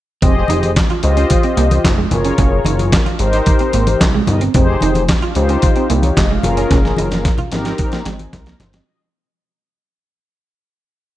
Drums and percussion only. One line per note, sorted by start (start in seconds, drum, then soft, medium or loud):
0.22 kick loud
0.22 closed hi-hat medium
0.22 muted conga soft
0.22 low conga medium
0.48 closed hi-hat medium
0.48 high conga medium
0.63 closed hi-hat soft
0.63 high conga medium
0.76 kick loud
0.76 snare loud
0.76 clap medium
0.76 closed hi-hat medium
0.89 closed hi-hat soft
0.89 high conga medium
1.03 closed hi-hat medium
1.03 muted conga soft
1.17 closed hi-hat medium
1.30 kick medium
1.30 closed hi-hat medium
1.30 high conga medium
1.43 closed hi-hat soft
1.57 closed hi-hat medium
1.57 muted conga soft
1.71 closed hi-hat medium
1.71 high conga medium
1.84 kick loud
1.84 snare loud
1.84 clap loud
1.84 closed hi-hat medium
1.84 muted conga soft
2.11 closed hi-hat medium
2.11 muted conga soft
2.11 high conga medium
2.11 low conga medium
2.25 closed hi-hat medium
2.38 kick loud
2.38 closed hi-hat medium
2.38 low conga medium
2.65 closed hi-hat medium
2.65 muted conga soft
2.65 high conga medium
2.79 closed hi-hat soft
2.79 high conga medium
2.92 kick loud
2.92 snare loud
2.92 clap medium
2.92 closed hi-hat medium
2.92 muted conga soft
3.06 closed hi-hat soft
3.06 high conga medium
3.19 closed hi-hat medium
3.19 muted conga soft
3.33 closed hi-hat medium
3.46 kick loud
3.46 closed hi-hat medium
3.46 high conga medium
3.59 closed hi-hat soft
3.73 closed hi-hat medium
3.73 muted conga soft
3.87 closed hi-hat medium
3.87 high conga medium
4.00 kick loud
4.00 snare loud
4.00 clap loud
4.00 closed hi-hat loud
4.00 muted conga soft
4.27 closed hi-hat medium
4.27 muted conga soft
4.27 high conga medium
4.27 low conga medium
4.41 closed hi-hat medium
4.54 kick loud
4.54 closed hi-hat medium
4.54 muted conga soft
4.54 low conga medium
4.81 closed hi-hat medium
4.81 high conga medium
4.95 closed hi-hat soft
4.95 high conga medium
5.08 kick loud
5.08 snare loud
5.08 clap medium
5.08 closed hi-hat medium
5.08 muted conga soft
5.21 closed hi-hat soft
5.21 high conga medium
5.35 closed hi-hat medium
5.49 closed hi-hat medium
5.62 kick loud
5.62 closed hi-hat medium
5.62 high conga medium
5.76 closed hi-hat soft
5.90 closed hi-hat medium
6.03 closed hi-hat medium
6.03 high conga medium
6.16 kick loud
6.16 snare loud
6.16 clap medium
6.16 closed hi-hat loud
6.16 muted conga soft
6.43 closed hi-hat medium
6.43 muted conga soft
6.43 high conga medium
6.43 low conga medium
6.57 closed hi-hat medium
6.71 kick loud
6.71 snare medium
6.71 closed hi-hat medium
6.71 muted conga soft
6.71 low conga medium
6.85 snare soft
6.97 closed hi-hat medium
6.97 muted conga soft
6.97 high conga medium
7.11 snare medium
7.11 closed hi-hat medium
7.11 high conga medium
7.25 kick loud
7.25 snare medium
7.25 closed hi-hat medium
7.38 closed hi-hat soft
7.38 high conga medium
7.38 low conga medium
7.51 snare medium
7.51 closed hi-hat medium
7.51 muted conga soft
7.65 snare medium
7.65 closed hi-hat soft
7.78 kick loud
7.78 closed hi-hat medium
7.78 high conga medium
7.92 snare medium
7.92 closed hi-hat soft
8.05 snare medium
8.05 closed hi-hat medium
8.05 muted conga soft
8.19 closed hi-hat medium
8.19 high conga medium
8.33 kick loud
8.33 snare medium
8.33 closed hi-hat medium
8.46 snare medium
8.46 closed hi-hat soft
8.60 snare medium
8.60 closed hi-hat medium
8.60 muted conga soft
8.60 high conga medium
8.60 low conga medium
8.73 snare medium
8.73 closed hi-hat medium